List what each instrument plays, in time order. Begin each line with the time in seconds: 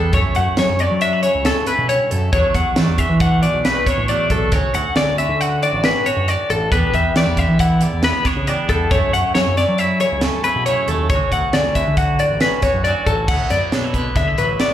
Already playing: clean electric guitar E2 D3 G3 B3 D4 A4
0.13 picked electric bass F#2, clean electric guitar F#2 A3 C#4 E4 C#5, kick, closed hi-hat
0.35 picked electric bass F#2, clean electric guitar A3 F#5, closed hi-hat
0.57 picked electric bass F#3, clean electric guitar C#4 C#5, snare, closed hi-hat
0.70 picked electric bass F#2
0.79 clean electric guitar F#3 D5, closed hi-hat
0.91 picked electric bass F#3
1.01 clean electric guitar D4 E5, closed hi-hat
1.13 clean electric guitar E4
1.23 clean electric guitar C#3 C#5, closed hi-hat
1.35 picked electric bass C#2
1.45 clean electric guitar C#4 A4, snare, closed hi-hat
1.66 clean electric guitar E4 B4, closed hi-hat
1.78 picked electric bass B2
1.88 clean electric guitar G2 C#5, closed hi-hat
2.11 clean electric guitar F#2 A4, picked electric bass F#2, closed hi-hat
2.32 clean electric guitar E2 F#3 A3 D4 C#5, picked electric bass E2, kick, closed hi-hat
2.54 picked electric bass E2, clean electric guitar F#3 F#5, kick, closed hi-hat
2.76 picked electric bass E3, clean electric guitar A3 D5, snare, closed hi-hat
2.88 picked electric bass E2
2.98 clean electric guitar E3 E5, kick, closed hi-hat
3.09 picked electric bass E3
3.20 clean electric guitar D4 F#5, kick, closed hi-hat
3.43 clean electric guitar B2 D5, closed hi-hat
3.54 picked electric bass B1
3.65 clean electric guitar A3 B4, snare, closed hi-hat
3.86 clean electric guitar D4 C#5, kick, closed hi-hat
3.98 picked electric bass A2
4.08 clean electric guitar E2 F#3 A3 D4 D5, closed hi-hat
4.30 picked electric bass B1, clean electric guitar F#3 A4, kick, closed hi-hat
4.52 picked electric bass D2, clean electric guitar D2 F#3 C#4 F#4 C#5, kick, closed hi-hat
4.74 picked electric bass D2, clean electric guitar F#3 F#5, closed hi-hat
4.96 picked electric bass D3, clean electric guitar C#4 D5, snare, closed hi-hat
5.08 picked electric bass D2
5.18 clean electric guitar D3 E5, closed hi-hat
5.29 picked electric bass D3
5.41 clean electric guitar F#4 F#5, closed hi-hat
5.62 clean electric guitar A2 D5, closed hi-hat
5.73 picked electric bass A1
5.84 clean electric guitar C#4 B4, snare, closed hi-hat
6.06 clean electric guitar F#4 C#5, closed hi-hat
6.17 picked electric bass F#2
6.28 clean electric guitar D5, closed hi-hat
6.50 picked electric bass A1, clean electric guitar D2 A4, closed hi-hat
6.72 clean electric guitar E2 G3 B3 D4 B4, picked electric bass E2, kick, closed hi-hat
6.94 picked electric bass E2, clean electric guitar G3 E5, kick, closed hi-hat
7.15 picked electric bass E3, clean electric guitar A3 D5, snare, closed hi-hat
7.26 picked electric bass E2, clean electric guitar B3
7.37 clean electric guitar D3 E5, kick, closed hi-hat
7.49 picked electric bass E3
7.59 clean electric guitar E4 F#5, kick, closed hi-hat
7.81 clean electric guitar E2 D5, closed hi-hat
7.93 picked electric bass E2
8.03 clean electric guitar B3 B4, snare, closed hi-hat
8.25 clean electric guitar D4 C#5, kick, snare, closed hi-hat
8.37 picked electric bass C#3
8.47 clean electric guitar E2 G3 B3 D4 D5, closed hi-hat
8.69 picked electric bass E2, clean electric guitar G3 A4, kick, closed hi-hat
8.91 picked electric bass F#2, clean electric guitar F#2 A3 C#4 E4 C#5, kick, closed hi-hat
9.13 picked electric bass F#2, clean electric guitar A3 F#5, closed hi-hat
9.35 picked electric bass F#3, clean electric guitar C#4 C#5, snare, closed hi-hat
9.47 picked electric bass F#2
9.57 clean electric guitar F#3 D5, snare, closed hi-hat
9.68 picked electric bass F#3
9.78 clean electric guitar E4 E5, closed hi-hat
10.00 clean electric guitar C#3 C#5, closed hi-hat
10.12 picked electric bass C#2
10.21 clean electric guitar C#4 A4, snare, closed hi-hat
10.44 clean electric guitar E4 B4, closed hi-hat
10.56 picked electric bass B2
10.66 clean electric guitar F#2 A3 C#4 E4 C#5, closed hi-hat
10.88 picked electric bass D#2, clean electric guitar A3 A4, closed hi-hat
11.10 picked electric bass D2, clean electric guitar D2 F#3 C#4 C#5, kick, closed hi-hat
11.14 clean electric guitar F#4
11.32 picked electric bass D2, clean electric guitar F#3 F#5, kick, closed hi-hat
11.53 picked electric bass D3, clean electric guitar C#4 D5, snare, closed hi-hat
11.65 picked electric bass D2
11.75 clean electric guitar D3 E5, kick, closed hi-hat
11.87 picked electric bass D3
11.97 clean electric guitar F#4 F#5, kick, closed hi-hat
12.19 clean electric guitar A2 D5, closed hi-hat
12.30 picked electric bass A1
12.40 clean electric guitar C#4 B4, snare, closed hi-hat
12.62 clean electric guitar F#4 C#5, kick, snare, closed hi-hat
12.74 picked electric bass F#2
12.84 clean electric guitar D2 F#3 C#4 F#4 D5, closed hi-hat
13.06 picked electric bass A1, clean electric guitar F#3 A4, kick, closed hi-hat
13.28 picked electric bass D2, clean electric guitar D2 F#3 B3 E4 F#5, kick, crash
13.50 picked electric bass F#2, clean electric guitar F#3 D5, snare, closed hi-hat
13.72 picked electric bass B2, clean electric guitar D4 C#5, snare, closed hi-hat
13.84 clean electric guitar E4
13.94 clean electric guitar D3 B3 B4, kick, closed hi-hat
14.16 picked electric bass D3, clean electric guitar D4 E5, kick, snare, closed hi-hat
14.27 clean electric guitar E4
14.38 picked electric bass A1, clean electric guitar F#3 B4, closed hi-hat
14.60 clean electric guitar A2 B3 D5, snare, closed hi-hat